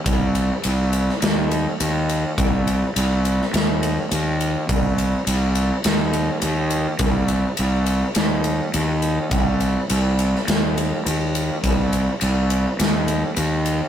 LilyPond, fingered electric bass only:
\new Staff \with { instrumentName = "Fingered electric bass" } { \clef bass \time 4/4 \key c \minor \tempo 4 = 104 c,4 c,4 ees,4 ees,4 | c,4 c,4 ees,4 ees,4 | c,4 c,4 ees,4 ees,4 | c,4 c,4 ees,4 ees,4 |
c,4 c,4 ees,4 ees,4 | c,4 c,4 ees,4 ees,4 | }